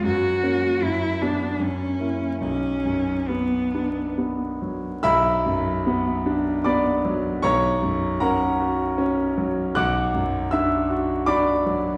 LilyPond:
<<
  \new Staff \with { instrumentName = "Grand piano" } { \time 3/4 \key b \minor \tempo 4 = 76 r2. | r2. | <e'' b'' e'''>2 <d'' b'' d'''>4 | <cis'' ais'' cis'''>4 <ais' fis'' ais''>4. r8 |
<fis'' d''' fis'''>4 <e'' e'''>4 <d'' b'' d'''>4 | }
  \new Staff \with { instrumentName = "Grand piano" } { \time 3/4 \key b \minor fis,8 <ais cis'>8 fis,8 <b d'>8 fis,8 <ais e'>8 | b,,8 fis,8 b8 d'8 b8 fis8 | b,,8 fis,8 b8 d'8 b8 fis8 | b,,8 fis,8 cis'8 fis'8 cis'8 fis8 |
b,,8 fis,8 d'8 fis'8 d'8 fis8 | }
  \new Staff \with { instrumentName = "Cello" } { \time 3/4 \key b \minor fis'4 e'8 d'8 cis'4 | cis'4 b4 r4 | r2. | r2. |
r2. | }
>>